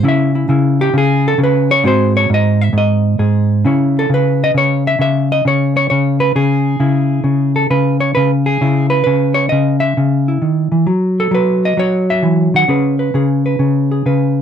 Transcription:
0.03 C#3 C#4 E4
0.08 E5
0.35 E4
0.49 C#3 E4
0.81 G4
0.93 C#3
0.98 G#4
1.28 A4
1.38 C#3
1.44 B4
1.71 C#5
1.84 G#2 C4 F#4 G#4 C5
2.17 C#5
2.30 G#2
2.34 D#5
2.62 E5
2.73 G#2
2.78 D#5
3.19 G#2 G#4
3.65 C#3 C#4 E4 C#5
3.99 A4
4.10 C#3
4.14 B4
4.44 D#5
4.54 C#3 C#5
4.87 E5
4.99 C#3 E5
5.32 D#5
5.45 C#3 C#5
5.77 C#5
5.90 C#3 C#5
6.20 B4
6.35 C#3 G#4
6.80 C#3 E4
7.24 C#3
7.56 A4
7.70 C#3 B4
8.00 C#5
8.15 C#3 B4
8.46 G#4
8.61 C#3 E4
8.90 B4
9.04 C#3 B4
9.34 C#5
9.49 C#3 D#5
9.80 E5
9.97 C#3
10.28 E4
10.42 D#3
10.72 E3
10.87 F#3
11.20 A4
11.31 F#3 B4
11.65 D#5
11.77 F#3 C#5
12.10 E5
12.23 E3
12.54 D#3 F#5
12.68 C#3 C#4 G#4 B4
12.99 B4
13.14 C#3 G#4
13.46 B4
13.59 C#3
13.92 G#4
14.06 C#3 B4

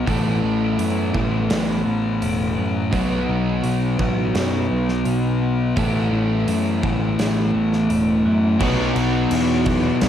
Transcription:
Already playing: B3
0.07 A1 A2 E3 A3 B3 A4, kick, open hi-hat
0.42 A1 E4
0.79 F#2 E3, open hi-hat
1.14 A1 A2 E3 A3, kick
1.49 A1 E3, snare, open hi-hat
1.85 A1 B3
2.20 E1 E4, open hi-hat
2.56 F#2 B3
2.91 B1 B2 F#3 B3 D#4 F#4, kick, open hi-hat
3.28 B1 D#4
3.63 B1 F#3, open hi-hat
3.98 A1 B2 F#3 B3, kick
4.34 F#2 F#3, snare, open hi-hat
4.70 B1 B3
4.89 snare
5.05 B1 D#4, open hi-hat
5.42 B3
5.76 A1 A2 E3 A3 B3 A4, kick, open hi-hat
6.11 A1 E4
6.47 F#2 E3, open hi-hat
6.83 A1 A2 E3 A3, kick
7.19 A1 E3, snare, open hi-hat
7.54 A1 B3
7.73 snare
7.89 E1 E4, open hi-hat
8.25 F#2 B3
8.59 B1 B2 F#3 B3 D#4 F#4, kick, crash
8.96 B1 B3, crash
9.31 E2 F#3, crash
9.66 B3, kick, crash
10.01 B1 F#3, snare, crash

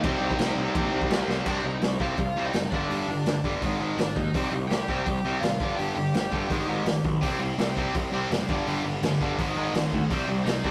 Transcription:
Already playing: D#4 D#5
0.03 C2 C3 G3 C4, kick, crash
0.20 C2
0.31 kick
0.38 C2, snare, crash
0.56 C2
0.75 A#1 C3 G3 C4, kick, crash
0.92 C2
1.02 kick
1.09 C2, snare, crash
1.28 C2, snare
1.46 C2 C3 G3 C4 D4 D5, kick, crash
1.64 C2 C3 G3 D#4 D#5
1.81 C2 C3 G3, snare, open hi-hat
2.00 C2 C3 G3 C4 F4 F5, kick
2.17 C2 C3 G3, kick, open hi-hat
2.36 C2 C3 G3 C4
2.45 D#4 D#5
2.53 F#1 C3 G3, snare, open hi-hat
2.70 G1 G2 D3 G3 D4 D5, kick
2.89 G1 G2 D3 G3, open hi-hat
3.08 G1 G2 D3
3.26 G1 G2 D3, snare, open hi-hat
3.44 G1 G2 D3 G3, kick
3.62 G#1 G#2 D#3 G#3, kick, open hi-hat
3.80 G#1 G#2 D#3 G#3
3.97 G#1 G#2 D#3 D4 D5, snare, open hi-hat
4.16 D#2 G#2 D#3 D#4 D#5, kick
4.34 C2 C3 G3 C4, kick, open hi-hat
4.49 C2 C3 G3 D#4 D#5
4.68 C2 C3 G3 G4 G5, snare, open hi-hat
4.88 C2 C3 G3 C4, kick
5.03 C2 G4 G5, kick, open hi-hat
5.07 C3 G3
5.23 C2 C3 G3 C4
5.40 G#1 C3 G3 F4 F5, open hi-hat
5.44 snare
5.60 G1 G2 D3 G3, kick
5.77 G1 G2 D3 G3 G4 G5, open hi-hat
5.95 G1 G2 D3 G4 G5
6.14 G1 G2 D3, snare, open hi-hat
6.32 G1 G2 D3 G3, kick
6.50 G#1 G#2 D#3 G#3, kick, open hi-hat
6.68 G#1 G#2 D#3 G#3
6.85 G#1 G#2 D#3, snare, open hi-hat
7.04 B1 G#2 D#3, kick
7.22 C2 C3 G3 C4, kick, open hi-hat
7.40 C2 C3 G3 C4
7.58 C2 C3 G3 C4, snare, open hi-hat
7.77 C2 C3 G3 C4, kick
7.94 C2 C3 G3 C4, kick, open hi-hat
8.12 C2 C3 G3 C4
8.30 F#1 C3 G3 C4, snare, open hi-hat
8.48 G1 G2 D3 G3, kick
8.66 G1 G2 D3 G3, open hi-hat
8.84 G1 G2 D3 G3
9.02 G1 G2 D3 G3, snare, open hi-hat
9.21 G1 G2 D3 G3, kick
9.38 G#1 G#2 D#3 G#3, kick, open hi-hat
9.56 G#1 G#2 D#3 G#3
9.74 G#1 G#2 D#3 G#3, snare, open hi-hat
9.92 D2 G#2 D#3 G#3, kick
10.10 C2 C3 G3 C4, kick, open hi-hat
10.28 C2 C3 G3 C4
10.45 C2 C3 G3 C4 D#4 D#5, snare, open hi-hat
10.64 C2 C3 G3 C4 D4 D5, kick

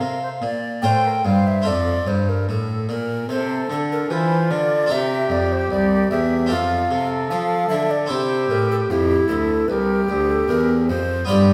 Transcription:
Already playing: F5
0.00 C3 A#4
0.23 C5
0.41 A#2 D5
0.82 A2 A3 F4 C5 G5
1.07 A#4
1.24 G2 D5 F5
1.30 C5
1.47 E5
1.62 C4 F4 A4
1.66 F2 D5
2.07 G2 C5
2.29 A#4
2.48 A2 A4
2.89 A#2 A#4
3.29 C3 A4 C5
3.70 D3 A4
3.92 A#4
4.10 E3 F4 C5
4.51 D3 D5
4.86 C4 G4 A#4
4.91 C3 G4 E5
5.30 F2 D5
5.52 C5
5.71 C2 D5
6.11 E2 E5
6.46 C4 F4 A4
6.50 F2 F4 F5
6.91 C3 A4
7.30 F3 F5
7.69 D3 E5
7.91 D5
8.06 C4 E4 G4
8.11 C3 G4 C5
8.50 A2 A#4
8.71 A4
8.90 F2 E4 G4
9.28 D2 A4
9.68 C2 G4 B4
9.73 A#4
10.08 D2 G4
10.29 A4
10.48 E2 A#4
10.88 F2 C5
11.25 G2 B3 F4 G4 D5
11.30 G2 G4

